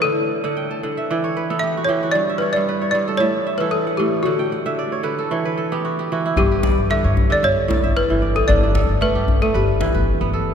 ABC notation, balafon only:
X:1
M:4/4
L:1/16
Q:1/4=114
K:Glyd
V:1 name="Balafon"
A12 e2 c2 | d2 B d3 d2 c3 B A2 G2 | F12 z4 | G4 e3 d c4 B3 A |
d4 B3 A G6 z2 |]